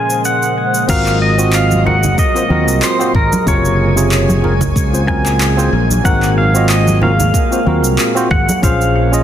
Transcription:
Already playing: A#2 C#3 F3 G#3 A#3 C#4 G#4 C5 D#5 F5 G#5
0.10 cabasa
0.25 F#5, cabasa
0.42 cabasa
0.74 cabasa
0.88 G#1 A#2 F#3 G#3 A#3 C4 F4 F#4 A#4 D#5 F5, kick, crash, cabasa
1.06 clap, cabasa
1.22 D#5
1.38 C4 F4 F#4 D#5, cabasa
1.53 F5, clap, cabasa
1.71 high conga, cabasa
1.84 C4 F4 F#4 A#4 F#5, low conga
2.03 low conga, cabasa
2.18 D#5, kick, cabasa
2.34 C4 F4 F#4 C5, cabasa
2.49 D#2 C4 F4 F#4 A#4, high conga
2.68 C2, cabasa
2.82 C5, clap, cabasa
2.99 C4 F4 F#4 C5, cabasa
3.15 G#1 A#4, kick
3.33 high conga, cabasa
3.46 F#1 C3 F#3 A#3 F4 G#4 A#4 C#5 G#5, kick, cabasa
3.65 cabasa
3.96 C3 F4 G#4 C#5, cabasa
4.12 clap, cabasa
4.29 high conga, cabasa
4.42 C4 F4 G#4 A#4, low conga
4.61 kick, low conga, cabasa
4.76 C#2, kick, cabasa
4.92 C4 F4 G#4 C5, cabasa
5.07 C4 F4 G#4 A#4 G#5, kick, high conga, low conga
5.26 clap, cabasa
5.41 clap, cabasa
5.57 C4 F4 G#4 C5, cabasa
5.73 A#1
5.90 high conga, cabasa
6.04 G#1 C4 D#4 F#4 A#4 F#5, kick, cabasa
6.23 clap, cabasa
6.38 F5
6.54 C4 F4 F#4 D#5, cabasa
6.69 D#5, clap, cabasa
6.87 high conga, cabasa
7.01 C4 F4 F#4 A#4 F5, low conga
7.19 low conga, cabasa
7.34 kick, cabasa
7.51 C4 F4 F#4 C5, cabasa
7.66 D#2 C4 F4 F#4 A#4, high conga
7.84 C2, cabasa
7.99 clap, cabasa
8.15 C4 F4 F#4 C5, cabasa
8.31 G#1 F#5, kick
8.49 high conga, cabasa
8.62 A#1 F3 A#3 C#4 F4 G#4 C5 F5, kick, cabasa
8.81 cabasa
9.12 C#4 F4 G#4 D#5, cabasa

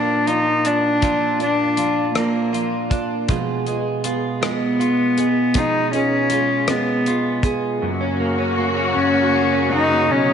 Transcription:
Already playing: A#2 F3 A#3 D4 F4
0.26 F3 A#3 D#4 F4, closed hi-hat
0.64 A#3 D4 F4, closed hi-hat
1.01 A#2 F3 A#3 D4 F4, kick, closed hi-hat
1.39 A#3 D4 F4, closed hi-hat
1.77 F3 A#3 D4 F4, closed hi-hat
2.15 A#2 F3 A#3 D4 F4, cross-stick, closed hi-hat
2.52 F3 A#3 D4 F4, closed hi-hat
2.91 A#3 D4 F4, kick, closed hi-hat
3.29 B2 F3 G#3 B3 F4 G#4, kick, closed hi-hat
3.66 G#3 B3 F4 G#4, closed hi-hat
4.04 G#3 B3 F4 G#4, closed hi-hat
4.41 B2 F3 G#3 B3 F4 G#4, cross-stick, closed hi-hat
4.79 G#3 B3 F4 G#4, closed hi-hat
5.17 G#3 B3 F4 G#4, closed hi-hat
5.54 B2 F3 G#3 B3 D#4 F4 G#4, kick, closed hi-hat
5.92 G#3 B3 C#4 F4 G#4, closed hi-hat
6.30 G#3 B3 F4 G#4, closed hi-hat
6.67 B2 F3 G#3 B3 F4 G#4, cross-stick, closed hi-hat
7.05 G#3 B3 F4 G#4, closed hi-hat
7.42 G#3 B3 F4 G#4, kick, closed hi-hat
7.79 F#2 C#3 F#3 A#3 F#4
8.01 C#4
8.20 A#3
8.38 C#4
8.58 A#3
8.76 C#4
8.95 F#2 C#4
9.14 C#4
9.33 A#3
9.53 C#4
9.71 A#3 D#4
9.91 C#4
10.07 B2 B3 C#4 D#4
10.30 C#4

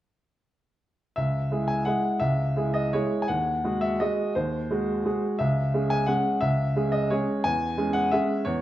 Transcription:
1.16 C#2 E5
1.52 G#3 E4 G#4
1.68 G#5
1.85 G#3 E4 G#4 F#5
2.20 C#2 E5
2.57 G#3 E4 G#4
2.74 D#5
2.93 G#3 E4 G#4 C#5
3.22 G#5
3.28 D#2 F#5
3.64 G#3 F#4 G#4
3.81 E5
4.00 G#3 F#4 G#4 D#5
4.35 D#2 C5
4.71 G#3 F#4 G#4
5.05 G#3 F#4 G#4
5.39 C#2 E5
5.74 G#3 C#4 G#4
5.90 G#5
6.06 G#3 C#4 G#4 F#5
6.41 C#2 E5
6.76 G#3 C#4 G#4
6.92 D#5
7.10 G#3 C#4 G#4 C#5
7.44 E2 G#5
7.78 G#3 C#4 G#4
7.93 F#5
8.12 G#3 C#4 G#4 E5
8.45 E2 C#5

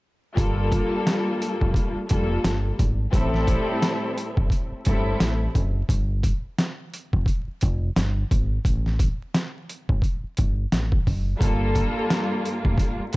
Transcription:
0.35 G1 G2 G3 A#3 F4 A4, kick, closed hi-hat
0.72 kick, closed hi-hat
1.07 snare, closed hi-hat
1.42 closed hi-hat
1.61 F1, kick
1.74 kick, closed hi-hat
1.96 muted fingered electric bass stroke
2.09 F1 G2 G3 A#3 F4 A4, kick, closed hi-hat
2.44 G1, snare, closed hi-hat
2.79 G#1, kick, closed hi-hat
3.12 A1 A2 G3 C4 E4 A4, kick, closed hi-hat
3.34 snare
3.47 kick, closed hi-hat
3.82 snare, closed hi-hat
4.18 closed hi-hat
4.37 G1, kick
4.50 kick, closed hi-hat
4.72 muted fingered electric bass stroke
4.85 G1 A2 G3 C4 E4 A4, kick, closed hi-hat
5.20 A1, snare, closed hi-hat
5.55 F#1, kick, closed hi-hat
5.89 G1, kick, closed hi-hat
6.23 kick, closed hi-hat
6.58 snare, closed hi-hat
6.94 closed hi-hat
7.13 F1, kick
7.26 kick, closed hi-hat
7.48 muted fingered electric bass stroke
7.61 F1, kick, closed hi-hat
7.96 G1, snare, closed hi-hat
8.31 G#1, kick, closed hi-hat
8.65 A1, kick, closed hi-hat
8.86 snare
8.99 kick, closed hi-hat
9.34 snare, closed hi-hat
9.69 closed hi-hat
9.89 G1, kick
10.02 kick, closed hi-hat
10.24 muted fingered electric bass stroke
10.37 G1, kick, closed hi-hat
10.72 A1, snare, closed hi-hat
10.92 kick
11.07 F#1, kick, open hi-hat
11.38 G1 G2 G3 A#3 F4 A4, kick, closed hi-hat
11.75 kick, closed hi-hat
12.10 snare, closed hi-hat
12.45 closed hi-hat
12.65 F1, kick
12.78 kick, closed hi-hat
12.99 muted fingered electric bass stroke
13.13 G2 G3 A#3 F4 A4, closed hi-hat

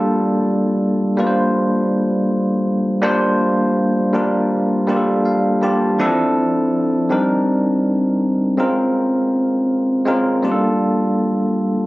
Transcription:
Already playing: G3 A#3 D4 F4 A4
1.17 G3 A#3 D4 F4 B4
1.27 C5
3.02 G3 A#3 D4 F4 C5
4.13 G3 A#3 D4 F4 A#4
4.87 G3 A#3 D4 F4 G4
4.96 A4
5.25 F5
5.61 G3 A#3 D4 F4 G4 A5
5.98 E3 C4 D4 E4 A4
6.05 F3
7.09 G3 C4 D4 D#4 A#4
8.57 G#3 C4 C#4 F4 A#4
10.05 G#3 C4 C#4 F4 A#4
10.42 G3 A#3 D4 F4 G4
10.52 A4

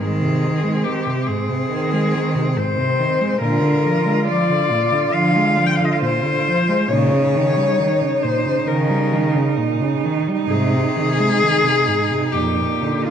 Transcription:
0.00 G#2 D#3 C4 G#4
0.22 C3
0.43 D#3
0.64 G#3
0.84 D#3 G4
1.06 C3
1.27 G#2 G#4
1.49 C3
1.70 D#3
1.92 G#3
2.14 D#3
2.35 C3
2.57 G#2 C5
2.78 C3
2.99 D#3
3.20 G#3
3.41 A#2 D3 F4 A#4
3.63 D3
3.84 F3
4.05 G#3
4.27 F3 D5
4.49 D3
4.71 A#2
4.92 D3
5.13 D3 F3 F5
5.35 G#3
5.57 F3
5.66 G5
5.76 D3 F5
5.85 D#5
5.93 F5
6.02 A#2 C5
6.25 D3
6.47 F3
6.68 G#3
6.88 A#2 C#3 D#4 C#5
7.12 C#3
7.34 D#3
7.56 G3
7.78 D#3
8.01 C#3
8.23 A#2 C5
8.46 C#3
8.68 C#3 D#3 A#4
8.89 G3
9.12 D#3
9.35 C#3
9.58 A#2
9.81 C#3
10.04 D#3
10.27 G3
10.48 G#2 C3 G#4
10.74 C3
10.96 D#3
11.19 G#3
11.42 D#3
11.64 C3
11.87 G#2
12.11 C3
12.31 F2 A#2 G4
12.58 A#2
12.83 D3
13.05 F3 F4

